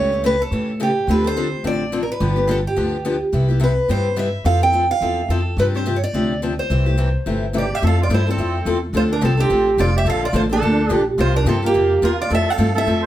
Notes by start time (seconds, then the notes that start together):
Already playing: C#2 C#3 E3 A3 C#4 G4 C#5
0.12 A3 C#4 G4
0.24 C#3 E3 A3 C#4 G4 B4
0.42 A4
0.51 A2 C#3 E3 A3 C#4 G4
0.80 C#3 E3 A3 C#4 G4
1.07 D2 D3 F3 C4 D4 A4 B4
1.24 C4 D4 A4 C5
1.36 D3 F3 C4 D4 A4
1.63 A1 D3 F3 C4 D4 A4
1.67 D5
1.92 D3 F3 C4 D4 A4
2.03 A#4
2.12 B4
2.20 G1 D3 F3 B3 D4 G4
2.36 B3 D4 G4
2.47 D3 F3 B3 D4 G4 G#4 A4
2.67 G4
2.76 D2 D3 F3 B3 D4 G4
3.05 D3 F3 B3 D4 G4
3.32 C2 C3 G3 B3 E4 G4
3.49 B3 E4 G4
3.60 C3 G3 B3 E4 G4 B4
3.88 G2 C3 G3 B3 E4 G4 C5
4.16 C3 G3 B3 E4 G4 E5
4.44 F2 F3 C4 E4 A4 F5
4.61 C4 E4 A4 G5
4.73 F3 C4 E4 A4
4.91 F5
5.00 E2 F3 C4 E4 A4
5.28 F2 F3 C4 E4 A4
5.57 G2 C3 F3 C4 D4 G4 B4
5.74 C4 D4 G4 C5
5.86 C3 F3 C4 D4 G4
5.96 C#5
6.04 D5
6.13 D2 C3 F3 C4 D4 G4
6.42 C3 F3 C4 D4 G4
6.59 C5
6.70 C2 C3 E3 A3 E4 G4
6.86 A3 E4 G4
6.98 C3 E3 A3 E4 G4
7.26 G1 C3 E3 A3 E4 G4
7.53 C3 E3 A3 E4 G4
7.58 D5
7.72 G4 E5
7.82 F2 F3 A3 C4 E4 A4
7.87 F5
8.00 F4 D5
8.09 G2 F3 A3 C4 E4 A4
8.14 C5
8.27 C4 E4 A4
8.37 F2 F3 A3 C4 E4 A4
8.65 E2 F3 A3 C4 E4 A4
8.93 D2 D3 F3 C4 D4 F4 A4 C5
9.12 D4 A#4
9.21 C2 D3 F3 C4 D4 A4
9.37 C4 D4 G4 A4
9.49 A1 D3 F3 C4 D4 A4
9.77 F1 D3 F3 C4 D4 F4 A4 D5
9.95 G4 E5
10.05 A#1 D3 F3 A#3 D4 A4
10.10 F5
10.23 F4 D5
10.33 A1 D3 F3 A#3 D4 F4 A4 C5
10.49 A#3 D4 A4
10.61 D2 D3 F3 A#3 D4 A4
10.89 A#1 D3 F3 A#3 D4 A4
11.18 C2 C3 F3 A#3 F4 G4 C5
11.35 D4 A#4
11.45 G2 C3 F3 A#3 C4 F4 G4
11.49 A4
11.62 A#3 F4 G4
11.74 F2 C3 F3 A#3 F4 G4
12.02 E2 C3 F3 A#3 F4 G4 A#4
12.18 F4 D5
12.30 F2 F3 A3 C4 E4 A4
12.35 E5
12.46 A4
12.50 F5
12.58 G2 F3 A3 C4 E4 A4
12.74 C4 E4 A4 E5
12.86 F2 F3 A3 C4 E4 A4
13.02 C5